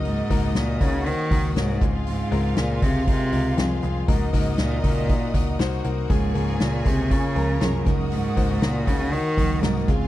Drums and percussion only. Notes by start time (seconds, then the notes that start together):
0.05 hi-hat pedal, open hi-hat
0.30 kick, hi-hat pedal, open hi-hat
0.55 snare, hi-hat pedal, open hi-hat
0.81 kick, hi-hat pedal, open hi-hat
1.06 hi-hat pedal, open hi-hat
1.31 kick, hi-hat pedal, open hi-hat
1.56 snare, hi-hat pedal, open hi-hat
1.69 snare
1.81 kick, hi-hat pedal, open hi-hat
2.07 hi-hat pedal, open hi-hat
2.32 hi-hat pedal, open hi-hat
2.56 snare, hi-hat pedal, open hi-hat
2.82 kick, hi-hat pedal, open hi-hat
3.07 kick, hi-hat pedal, open hi-hat
3.32 hi-hat pedal, open hi-hat
3.58 snare, hi-hat pedal, open hi-hat
3.83 hi-hat pedal, open hi-hat
4.08 kick, hi-hat pedal, open hi-hat
4.33 kick, hi-hat pedal, open hi-hat
4.58 snare, hi-hat pedal, open hi-hat
4.84 kick, hi-hat pedal, open hi-hat
5.09 kick, hi-hat pedal, open hi-hat
5.34 kick, hi-hat pedal, open hi-hat
5.60 snare, hi-hat pedal, open hi-hat
5.72 snare
5.84 hi-hat pedal, open hi-hat
6.10 kick, hi-hat pedal, open hi-hat
6.35 hi-hat pedal, open hi-hat
6.60 snare, hi-hat pedal, open hi-hat
6.86 kick, hi-hat pedal, open hi-hat
7.11 kick, hi-hat pedal, open hi-hat
7.36 hi-hat pedal, open hi-hat
7.61 snare, hi-hat pedal, open hi-hat
7.86 kick, hi-hat pedal, open hi-hat
8.11 hi-hat pedal, open hi-hat
8.37 kick, hi-hat pedal, open hi-hat
8.62 snare, hi-hat pedal, open hi-hat
8.87 kick, hi-hat pedal, open hi-hat
9.12 hi-hat pedal, open hi-hat
9.37 kick, hi-hat pedal, open hi-hat
9.63 snare, hi-hat pedal, open hi-hat
9.75 snare
9.88 kick, hi-hat pedal, open hi-hat